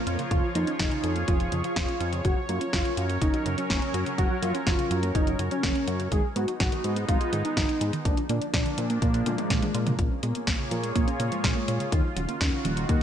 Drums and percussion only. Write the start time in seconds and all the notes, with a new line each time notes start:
0.07 closed hi-hat
0.19 closed hi-hat
0.31 kick, closed hi-hat
0.55 closed hi-hat
0.67 closed hi-hat
0.79 kick, snare, closed hi-hat
0.92 closed hi-hat
1.04 closed hi-hat
1.16 closed hi-hat
1.28 kick, closed hi-hat
1.40 closed hi-hat
1.52 closed hi-hat
1.64 closed hi-hat
1.76 kick, snare, closed hi-hat
1.88 closed hi-hat
2.00 closed hi-hat
2.13 closed hi-hat
2.25 kick, closed hi-hat
2.49 closed hi-hat
2.61 closed hi-hat
2.73 kick, snare, closed hi-hat
2.85 closed hi-hat
2.97 closed hi-hat
3.10 closed hi-hat
3.22 kick, closed hi-hat
3.34 closed hi-hat
3.46 closed hi-hat
3.58 closed hi-hat
3.70 kick, snare, closed hi-hat
3.82 closed hi-hat
3.94 closed hi-hat
4.06 closed hi-hat
4.18 kick, closed hi-hat
4.43 closed hi-hat
4.55 closed hi-hat
4.67 kick, snare, closed hi-hat
4.79 closed hi-hat
4.91 closed hi-hat
5.03 closed hi-hat
5.15 kick, closed hi-hat
5.27 closed hi-hat
5.39 closed hi-hat
5.51 closed hi-hat
5.63 kick, snare, closed hi-hat
5.75 closed hi-hat
5.88 closed hi-hat
6.00 closed hi-hat
6.12 kick, closed hi-hat
6.36 closed hi-hat
6.48 closed hi-hat
6.60 kick, snare, closed hi-hat
6.72 closed hi-hat
6.84 closed hi-hat
6.96 closed hi-hat
7.09 kick, closed hi-hat
7.21 closed hi-hat
7.33 closed hi-hat
7.45 closed hi-hat
7.57 kick, snare, closed hi-hat
7.69 closed hi-hat
7.81 closed hi-hat
7.93 closed hi-hat
8.05 kick, closed hi-hat
8.17 closed hi-hat
8.29 closed hi-hat
8.42 closed hi-hat
8.54 kick, snare, closed hi-hat
8.66 closed hi-hat
8.78 closed hi-hat
8.90 closed hi-hat
9.02 kick, closed hi-hat
9.14 closed hi-hat
9.26 closed hi-hat, high tom
9.38 closed hi-hat, high tom
9.50 kick, snare, closed hi-hat, mid tom
9.62 closed hi-hat, mid tom
9.75 closed hi-hat
9.87 closed hi-hat, mid tom
9.99 kick, closed hi-hat
10.23 closed hi-hat
10.35 closed hi-hat
10.47 kick, snare, closed hi-hat
10.71 closed hi-hat
10.84 closed hi-hat
10.96 kick, closed hi-hat
11.08 closed hi-hat
11.20 closed hi-hat
11.32 closed hi-hat
11.44 kick, snare, closed hi-hat
11.68 closed hi-hat
11.80 closed hi-hat
11.92 kick, closed hi-hat
12.17 closed hi-hat
12.29 closed hi-hat
12.41 kick, snare, closed hi-hat
12.65 closed hi-hat
12.77 closed hi-hat
12.89 kick, closed hi-hat